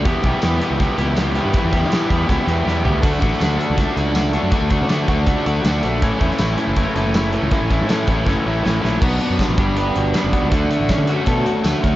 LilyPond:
<<
  \new Staff \with { instrumentName = "String machine" } { \time 4/4 \key d \major \tempo 4 = 160 r1 | r1 | r1 | r1 |
r1 | r1 | <b' d'' cis'''>4. <fis'' b''>2~ <fis'' b''>8 | <fis' cis'' cis'''>1 | }
  \new Staff \with { instrumentName = "Overdriven electric guitar" } { \time 4/4 \key d \major <e b e' g'>8 <e b e' g'>8 <e b e' g'>8 <e b e' g'>8 <e b e' g'>8 <e b e' g'>8 <e b e' g'>8 <e b e' g'>8 | <e b e' g'>8 <e b e' g'>8 <e b e' g'>8 <e b e' g'>8 <e b e' g'>8 <e b e' g'>8 <e b e' g'>8 <e b e' g'>8 | <a d' fis'>8 <a d' fis'>8 <a d' fis'>8 <a d' fis'>8 <a d' fis'>8 <a d' fis'>8 <a d' fis'>8 <a d' fis'>8 | <a d' fis'>8 <a d' fis'>8 <a d' fis'>8 <a d' fis'>8 <a d' fis'>8 <a d' fis'>8 <a d' fis'>8 <a d' fis'>8 |
<e a cis'>8 <e a cis'>8 <e a cis'>8 <e a cis'>8 <e a cis'>8 <e a cis'>8 <e a cis'>8 <e a cis'>8 | <e a cis'>8 <e a cis'>8 <e a cis'>8 <e a cis'>8 <e a cis'>8 <e a cis'>8 <e a cis'>8 <e a cis'>8 | <fis b d' fis'>4. <b d' g'>4. <b d'>4 | <a d' fis'>4. <a fis'>4. <a fis'>4 | }
  \new Staff \with { instrumentName = "Overdriven electric guitar" } { \time 4/4 \key d \major <e, b, e g b g'>8 <e, b, e g b g'>8 <e, b, e g b g'>8 <e, b, e g b g'>8 <e, b, e g b g'>8 <e, b, e g b g'>8 <e, b, e g b g'>8 <e, b, e g b g'>8 | <e, b, e g b g'>8 <e, b, e g b g'>8 <e, b, e g b g'>8 <e, b, e g b g'>8 <e, b, e g b g'>8 <e, b, e g b g'>8 <e, b, e g b g'>8 <e, b, e g b g'>8 | <d a d' fis'>8 <d a d' fis'>8 <d a d' fis'>8 <d a d' fis'>8 <d a d' fis'>8 <d a d' fis'>8 <d a d' fis'>8 <d a d' fis'>8 | <d a d' fis'>8 <d a d' fis'>8 <d a d' fis'>8 <d a d' fis'>8 <d a d' fis'>8 <d a d' fis'>8 <d a d' fis'>8 <d a d' fis'>8 |
<a, e a cis' e'>8 <a, e a cis' e'>8 <a, e a cis' e'>8 <a, e a cis' e'>8 <a, e a cis' e'>8 <a, e a cis' e'>8 <a, e a cis' e'>8 <a, e a cis' e'>8 | <a, e a cis' e'>8 <a, e a cis' e'>8 <a, e a cis' e'>8 <a, e a cis' e'>8 <a, e a cis' e'>8 <a, e a cis' e'>8 <a, e a cis' e'>8 <a, e a cis' e'>8 | b8 b8 d'8 g8 b'8 fis'8 g8 fis'8 | d8 d8 cis'8 fis'8 a'8 fis'8 d8 fis'8 | }
  \new Staff \with { instrumentName = "Fingered electric bass" } { \clef bass \time 4/4 \key d \major e,16 r16 b,,16 r16 e,8 r16 cis,8 r16 cis,4~ cis,16 g,16 | r16 e,8 e8. e,8 cis,16 r16 e,8 e,8 d,8 | d,16 r16 a,,16 r16 d,8 r16 cis,8 r16 cis,4~ cis,16 fis,16 | r16 d,8 d8. d,8 cis,16 r16 d,8 d,8 bes,,8 |
a,,16 r16 e,16 r16 a,,8 r16 fis,,8 r16 fis,,4~ fis,,16 cis,16 | r16 a,,8 a,8. a,,8 fis,,16 r16 a,,8 a,,8 bes,,8 | b,,8 r16 fis,16 r16 a,,16 g,,4 g,,8 r16 fis,,16 r16 cis,16 | d,8 r16 a,,8 d8 r16 b,8 r8 d,16 r16 d,8 | }
  \new DrumStaff \with { instrumentName = "Drums" } \drummode { \time 4/4 <hh bd>8 <hh bd>8 <hh sn tamb>8 hh8 <hh bd>8 hh8 <hh sn tamb>8 hh8 | <hh bd>8 <hh bd>16 sn16 <hh sn tamb>8 <hh bd>8 <hh bd>8 hh8 sn8 tomfh8 | <cymc hh bd>8 <hh bd>16 sn16 <hh sn tamb>8 hh8 <hh bd>8 hh8 <hh sn tamb>8 hh8 | <hh bd>8 <hh bd>8 <hh sn tamb>8 <hh bd>8 <hh bd>8 hh8 <hh sn tamb>8 hh8 |
<hh bd>8 <hh bd>16 sn16 <hh sn tamb>8 hh8 <hh bd>8 hh8 <hh sn tamb>8 hh8 | <hh bd>8 <hh bd>8 <hh sn tamb>8 <hh bd>8 <bd sn>4 sn8 sn8 | <cymc bd>8 hh8 <hh bd sn tamb>8 <hh bd>8 hh8 hh8 <hh sn tamb>8 <hh bd>8 | <hh bd>8 hh8 <hh bd sn tamb>8 hh8 <hh bd>8 hh8 <hh sn tamb>8 <hh bd>8 | }
>>